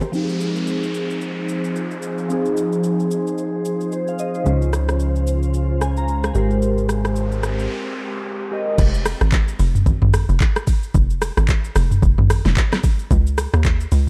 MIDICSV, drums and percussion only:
0, 0, Header, 1, 2, 480
1, 0, Start_track
1, 0, Key_signature, -4, "minor"
1, 0, Tempo, 540541
1, 121, Time_signature, 4, 2, 24, 8
1, 12516, End_track
2, 0, Start_track
2, 0, Title_t, "Drums"
2, 11, Note_on_c, 9, 61, 79
2, 16, Note_on_c, 9, 82, 45
2, 100, Note_off_c, 9, 61, 0
2, 105, Note_off_c, 9, 82, 0
2, 118, Note_on_c, 9, 82, 68
2, 207, Note_off_c, 9, 82, 0
2, 258, Note_on_c, 9, 82, 54
2, 347, Note_off_c, 9, 82, 0
2, 359, Note_on_c, 9, 82, 92
2, 448, Note_off_c, 9, 82, 0
2, 497, Note_on_c, 9, 82, 51
2, 586, Note_off_c, 9, 82, 0
2, 595, Note_on_c, 9, 82, 72
2, 684, Note_off_c, 9, 82, 0
2, 739, Note_on_c, 9, 82, 50
2, 828, Note_off_c, 9, 82, 0
2, 838, Note_on_c, 9, 82, 84
2, 927, Note_off_c, 9, 82, 0
2, 980, Note_on_c, 9, 82, 47
2, 1069, Note_off_c, 9, 82, 0
2, 1078, Note_on_c, 9, 82, 64
2, 1167, Note_off_c, 9, 82, 0
2, 1320, Note_on_c, 9, 82, 93
2, 1409, Note_off_c, 9, 82, 0
2, 1458, Note_on_c, 9, 82, 54
2, 1547, Note_off_c, 9, 82, 0
2, 1560, Note_on_c, 9, 82, 60
2, 1648, Note_off_c, 9, 82, 0
2, 1696, Note_on_c, 9, 82, 49
2, 1785, Note_off_c, 9, 82, 0
2, 1796, Note_on_c, 9, 82, 83
2, 1885, Note_off_c, 9, 82, 0
2, 1936, Note_on_c, 9, 82, 41
2, 2024, Note_off_c, 9, 82, 0
2, 2041, Note_on_c, 9, 82, 68
2, 2130, Note_off_c, 9, 82, 0
2, 2180, Note_on_c, 9, 82, 54
2, 2269, Note_off_c, 9, 82, 0
2, 2281, Note_on_c, 9, 82, 92
2, 2370, Note_off_c, 9, 82, 0
2, 2420, Note_on_c, 9, 82, 51
2, 2508, Note_off_c, 9, 82, 0
2, 2517, Note_on_c, 9, 82, 70
2, 2606, Note_off_c, 9, 82, 0
2, 2662, Note_on_c, 9, 82, 53
2, 2750, Note_off_c, 9, 82, 0
2, 2761, Note_on_c, 9, 82, 88
2, 2850, Note_off_c, 9, 82, 0
2, 2904, Note_on_c, 9, 82, 51
2, 2993, Note_off_c, 9, 82, 0
2, 3000, Note_on_c, 9, 82, 62
2, 3089, Note_off_c, 9, 82, 0
2, 3242, Note_on_c, 9, 82, 96
2, 3331, Note_off_c, 9, 82, 0
2, 3380, Note_on_c, 9, 82, 53
2, 3469, Note_off_c, 9, 82, 0
2, 3481, Note_on_c, 9, 82, 60
2, 3570, Note_off_c, 9, 82, 0
2, 3619, Note_on_c, 9, 82, 49
2, 3708, Note_off_c, 9, 82, 0
2, 3718, Note_on_c, 9, 82, 87
2, 3807, Note_off_c, 9, 82, 0
2, 3858, Note_on_c, 9, 82, 42
2, 3947, Note_off_c, 9, 82, 0
2, 3960, Note_on_c, 9, 82, 67
2, 4049, Note_off_c, 9, 82, 0
2, 4101, Note_on_c, 9, 82, 54
2, 4190, Note_off_c, 9, 82, 0
2, 4201, Note_on_c, 9, 37, 92
2, 4201, Note_on_c, 9, 82, 89
2, 4290, Note_off_c, 9, 37, 0
2, 4290, Note_off_c, 9, 82, 0
2, 4339, Note_on_c, 9, 82, 53
2, 4340, Note_on_c, 9, 37, 91
2, 4427, Note_off_c, 9, 82, 0
2, 4429, Note_off_c, 9, 37, 0
2, 4437, Note_on_c, 9, 82, 67
2, 4526, Note_off_c, 9, 82, 0
2, 4580, Note_on_c, 9, 82, 52
2, 4668, Note_off_c, 9, 82, 0
2, 4679, Note_on_c, 9, 82, 89
2, 4768, Note_off_c, 9, 82, 0
2, 4820, Note_on_c, 9, 82, 51
2, 4909, Note_off_c, 9, 82, 0
2, 4919, Note_on_c, 9, 82, 66
2, 5007, Note_off_c, 9, 82, 0
2, 5162, Note_on_c, 9, 82, 94
2, 5163, Note_on_c, 9, 37, 91
2, 5251, Note_off_c, 9, 82, 0
2, 5252, Note_off_c, 9, 37, 0
2, 5299, Note_on_c, 9, 82, 51
2, 5388, Note_off_c, 9, 82, 0
2, 5400, Note_on_c, 9, 82, 64
2, 5489, Note_off_c, 9, 82, 0
2, 5538, Note_on_c, 9, 82, 47
2, 5541, Note_on_c, 9, 37, 98
2, 5627, Note_off_c, 9, 82, 0
2, 5630, Note_off_c, 9, 37, 0
2, 5638, Note_on_c, 9, 82, 85
2, 5727, Note_off_c, 9, 82, 0
2, 5777, Note_on_c, 9, 82, 42
2, 5866, Note_off_c, 9, 82, 0
2, 5879, Note_on_c, 9, 82, 68
2, 5968, Note_off_c, 9, 82, 0
2, 6019, Note_on_c, 9, 82, 54
2, 6108, Note_off_c, 9, 82, 0
2, 6118, Note_on_c, 9, 82, 90
2, 6119, Note_on_c, 9, 37, 89
2, 6207, Note_off_c, 9, 82, 0
2, 6208, Note_off_c, 9, 37, 0
2, 6258, Note_on_c, 9, 82, 54
2, 6259, Note_on_c, 9, 37, 89
2, 6347, Note_off_c, 9, 82, 0
2, 6348, Note_off_c, 9, 37, 0
2, 6356, Note_on_c, 9, 82, 75
2, 6445, Note_off_c, 9, 82, 0
2, 6499, Note_on_c, 9, 82, 50
2, 6588, Note_off_c, 9, 82, 0
2, 6600, Note_on_c, 9, 82, 84
2, 6601, Note_on_c, 9, 37, 92
2, 6689, Note_off_c, 9, 82, 0
2, 6690, Note_off_c, 9, 37, 0
2, 6742, Note_on_c, 9, 82, 53
2, 6831, Note_off_c, 9, 82, 0
2, 7800, Note_on_c, 9, 36, 115
2, 7800, Note_on_c, 9, 49, 100
2, 7800, Note_on_c, 9, 82, 71
2, 7889, Note_off_c, 9, 36, 0
2, 7889, Note_off_c, 9, 49, 0
2, 7889, Note_off_c, 9, 82, 0
2, 7941, Note_on_c, 9, 82, 61
2, 8029, Note_off_c, 9, 82, 0
2, 8041, Note_on_c, 9, 37, 96
2, 8041, Note_on_c, 9, 46, 58
2, 8041, Note_on_c, 9, 82, 100
2, 8130, Note_off_c, 9, 37, 0
2, 8130, Note_off_c, 9, 46, 0
2, 8130, Note_off_c, 9, 82, 0
2, 8178, Note_on_c, 9, 82, 56
2, 8180, Note_on_c, 9, 37, 94
2, 8267, Note_off_c, 9, 82, 0
2, 8269, Note_off_c, 9, 37, 0
2, 8275, Note_on_c, 9, 82, 78
2, 8277, Note_on_c, 9, 39, 103
2, 8279, Note_on_c, 9, 36, 106
2, 8364, Note_off_c, 9, 82, 0
2, 8366, Note_off_c, 9, 39, 0
2, 8368, Note_off_c, 9, 36, 0
2, 8419, Note_on_c, 9, 82, 55
2, 8508, Note_off_c, 9, 82, 0
2, 8519, Note_on_c, 9, 46, 55
2, 8519, Note_on_c, 9, 82, 95
2, 8608, Note_off_c, 9, 46, 0
2, 8608, Note_off_c, 9, 82, 0
2, 8659, Note_on_c, 9, 45, 68
2, 8662, Note_on_c, 9, 82, 56
2, 8748, Note_off_c, 9, 45, 0
2, 8751, Note_off_c, 9, 82, 0
2, 8758, Note_on_c, 9, 36, 113
2, 8759, Note_on_c, 9, 82, 66
2, 8847, Note_off_c, 9, 36, 0
2, 8848, Note_off_c, 9, 82, 0
2, 8896, Note_on_c, 9, 45, 97
2, 8985, Note_off_c, 9, 45, 0
2, 9001, Note_on_c, 9, 46, 58
2, 9001, Note_on_c, 9, 82, 107
2, 9002, Note_on_c, 9, 37, 101
2, 9090, Note_off_c, 9, 46, 0
2, 9090, Note_off_c, 9, 82, 0
2, 9091, Note_off_c, 9, 37, 0
2, 9138, Note_on_c, 9, 82, 56
2, 9227, Note_off_c, 9, 82, 0
2, 9238, Note_on_c, 9, 82, 65
2, 9239, Note_on_c, 9, 39, 105
2, 9240, Note_on_c, 9, 36, 98
2, 9327, Note_off_c, 9, 82, 0
2, 9328, Note_off_c, 9, 36, 0
2, 9328, Note_off_c, 9, 39, 0
2, 9377, Note_on_c, 9, 82, 51
2, 9380, Note_on_c, 9, 37, 102
2, 9465, Note_off_c, 9, 82, 0
2, 9469, Note_off_c, 9, 37, 0
2, 9476, Note_on_c, 9, 46, 59
2, 9476, Note_on_c, 9, 82, 92
2, 9478, Note_on_c, 9, 36, 91
2, 9565, Note_off_c, 9, 46, 0
2, 9565, Note_off_c, 9, 82, 0
2, 9567, Note_off_c, 9, 36, 0
2, 9616, Note_on_c, 9, 82, 46
2, 9705, Note_off_c, 9, 82, 0
2, 9719, Note_on_c, 9, 36, 115
2, 9719, Note_on_c, 9, 82, 77
2, 9808, Note_off_c, 9, 36, 0
2, 9808, Note_off_c, 9, 82, 0
2, 9859, Note_on_c, 9, 82, 61
2, 9948, Note_off_c, 9, 82, 0
2, 9960, Note_on_c, 9, 46, 57
2, 9960, Note_on_c, 9, 82, 100
2, 9961, Note_on_c, 9, 37, 96
2, 10049, Note_off_c, 9, 37, 0
2, 10049, Note_off_c, 9, 46, 0
2, 10049, Note_off_c, 9, 82, 0
2, 10098, Note_on_c, 9, 82, 58
2, 10100, Note_on_c, 9, 37, 101
2, 10187, Note_off_c, 9, 82, 0
2, 10189, Note_off_c, 9, 37, 0
2, 10197, Note_on_c, 9, 82, 81
2, 10199, Note_on_c, 9, 36, 101
2, 10199, Note_on_c, 9, 39, 105
2, 10285, Note_off_c, 9, 82, 0
2, 10288, Note_off_c, 9, 36, 0
2, 10288, Note_off_c, 9, 39, 0
2, 10340, Note_on_c, 9, 82, 54
2, 10428, Note_off_c, 9, 82, 0
2, 10439, Note_on_c, 9, 46, 55
2, 10439, Note_on_c, 9, 82, 97
2, 10440, Note_on_c, 9, 37, 100
2, 10528, Note_off_c, 9, 46, 0
2, 10528, Note_off_c, 9, 82, 0
2, 10529, Note_off_c, 9, 37, 0
2, 10578, Note_on_c, 9, 45, 69
2, 10581, Note_on_c, 9, 82, 55
2, 10667, Note_off_c, 9, 45, 0
2, 10670, Note_off_c, 9, 82, 0
2, 10678, Note_on_c, 9, 36, 121
2, 10679, Note_on_c, 9, 82, 71
2, 10767, Note_off_c, 9, 36, 0
2, 10768, Note_off_c, 9, 82, 0
2, 10817, Note_on_c, 9, 45, 91
2, 10906, Note_off_c, 9, 45, 0
2, 10922, Note_on_c, 9, 46, 60
2, 10922, Note_on_c, 9, 82, 102
2, 10923, Note_on_c, 9, 37, 103
2, 11011, Note_off_c, 9, 46, 0
2, 11011, Note_off_c, 9, 82, 0
2, 11012, Note_off_c, 9, 37, 0
2, 11060, Note_on_c, 9, 82, 56
2, 11062, Note_on_c, 9, 38, 65
2, 11148, Note_off_c, 9, 82, 0
2, 11151, Note_off_c, 9, 38, 0
2, 11159, Note_on_c, 9, 82, 66
2, 11160, Note_on_c, 9, 36, 94
2, 11160, Note_on_c, 9, 39, 104
2, 11248, Note_off_c, 9, 82, 0
2, 11249, Note_off_c, 9, 36, 0
2, 11249, Note_off_c, 9, 39, 0
2, 11298, Note_on_c, 9, 82, 52
2, 11301, Note_on_c, 9, 37, 102
2, 11301, Note_on_c, 9, 38, 71
2, 11387, Note_off_c, 9, 82, 0
2, 11390, Note_off_c, 9, 37, 0
2, 11390, Note_off_c, 9, 38, 0
2, 11398, Note_on_c, 9, 46, 55
2, 11398, Note_on_c, 9, 82, 92
2, 11399, Note_on_c, 9, 36, 97
2, 11486, Note_off_c, 9, 46, 0
2, 11486, Note_off_c, 9, 82, 0
2, 11488, Note_off_c, 9, 36, 0
2, 11537, Note_on_c, 9, 82, 47
2, 11626, Note_off_c, 9, 82, 0
2, 11640, Note_on_c, 9, 36, 122
2, 11641, Note_on_c, 9, 82, 72
2, 11729, Note_off_c, 9, 36, 0
2, 11729, Note_off_c, 9, 82, 0
2, 11781, Note_on_c, 9, 82, 60
2, 11870, Note_off_c, 9, 82, 0
2, 11879, Note_on_c, 9, 46, 55
2, 11879, Note_on_c, 9, 82, 100
2, 11880, Note_on_c, 9, 37, 97
2, 11968, Note_off_c, 9, 46, 0
2, 11968, Note_off_c, 9, 82, 0
2, 11969, Note_off_c, 9, 37, 0
2, 12019, Note_on_c, 9, 82, 59
2, 12021, Note_on_c, 9, 37, 103
2, 12108, Note_off_c, 9, 82, 0
2, 12110, Note_off_c, 9, 37, 0
2, 12116, Note_on_c, 9, 82, 79
2, 12118, Note_on_c, 9, 39, 106
2, 12119, Note_on_c, 9, 36, 101
2, 12205, Note_off_c, 9, 82, 0
2, 12207, Note_off_c, 9, 39, 0
2, 12208, Note_off_c, 9, 36, 0
2, 12259, Note_on_c, 9, 82, 55
2, 12347, Note_off_c, 9, 82, 0
2, 12358, Note_on_c, 9, 46, 57
2, 12358, Note_on_c, 9, 82, 96
2, 12447, Note_off_c, 9, 46, 0
2, 12447, Note_off_c, 9, 82, 0
2, 12516, End_track
0, 0, End_of_file